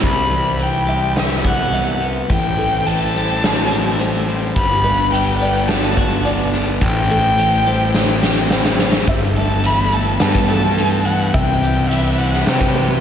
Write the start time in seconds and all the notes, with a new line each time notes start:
0.01 C2 C3 G4 E5 B5, kick, closed hi-hat
0.30 E3 C5, closed hi-hat
0.58 E3 G5, closed hi-hat
0.87 G3 E5, closed hi-hat
1.16 B3 E5, snare, closed hi-hat
1.44 E4 F#5, kick, closed hi-hat
1.72 G3 E5, closed hi-hat
2.00 B3, closed hi-hat
2.27 A1 A2 A3 E4 C5 G5, kick, closed hi-hat
2.31 G5
2.57 E3 A4, closed hi-hat
2.85 E3 A5, closed hi-hat
3.14 G3 C5, closed hi-hat
3.43 C4, snare, closed hi-hat
3.71 E4, closed hi-hat
3.99 G3 C5, closed hi-hat
4.28 C4, closed hi-hat
4.55 G1 G3 D4 B4 F#5 B5, kick, closed hi-hat
4.84 B3 B4, closed hi-hat
5.11 G3 G5, closed hi-hat
5.38 B3 D5 G5, closed hi-hat
5.67 D4 A5, snare, closed hi-hat
5.97 F#4, kick, closed hi-hat
6.25 B3 D5, closed hi-hat
6.53 D4, snare, closed hi-hat
6.80 A1 A2 A3 E4 C5 G5, kick, closed hi-hat
7.10 E3 A4, closed hi-hat
7.38 E3, closed hi-hat
7.66 G3 C5, closed hi-hat
7.94 C4, snare
8.23 G4, snare
8.51 G3 C5, snare
8.65 snare
8.79 C4, snare
8.92 snare
9.06 G1 G2 B3 A4 E5 G5, kick, closed hi-hat
9.36 A3 A5, closed hi-hat
9.64 E3 B5, closed hi-hat
9.92 A3 A5, closed hi-hat
10.20 G2 B3 B4 A5, snare, closed hi-hat
10.35 kick
10.49 E3 A4, closed hi-hat
10.78 A3, closed hi-hat
11.05 E3 F#5, closed hi-hat
11.33 C2 C3 B4 E5 G5, kick, closed hi-hat
11.63 G3, closed hi-hat
11.89 E3 E5, closed hi-hat
12.18 G3 F#5, closed hi-hat
12.33 snare
12.46 C3 B3 C5 G5, snare, closed hi-hat
12.61 kick
12.74 E3 B4, closed hi-hat